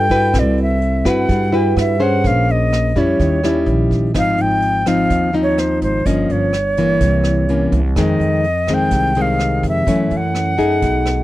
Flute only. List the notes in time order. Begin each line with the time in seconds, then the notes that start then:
Already playing: G5
0.39 D5
0.62 E5
1.09 F#5
1.55 G5
1.79 E5
2.02 F#5
2.27 F5
2.51 D#5
2.99 C#5
4.18 F5
4.41 G5
4.88 F5
5.43 C#5
5.59 C5
5.83 C5
6.06 D#5
6.32 C#5
7.99 D#5
8.74 G5
9.21 F5
9.69 E5
10.17 F#5